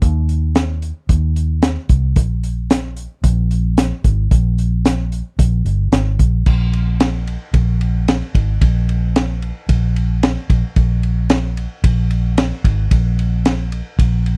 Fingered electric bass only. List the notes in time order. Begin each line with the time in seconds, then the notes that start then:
0.02 D#2
1.09 D#2
1.90 C2
2.16 A#1
3.23 A#1
4.04 G#1
4.31 A#1
5.39 A#1
5.65 G1
5.92 G#1
6.19 A#1
6.46 A#1
7.53 A#1
8.35 G#1
8.61 A#1
9.69 A#1
10.50 A#1
10.76 A#1
11.84 A#1
12.64 G#1
12.91 A#1
13.99 A#1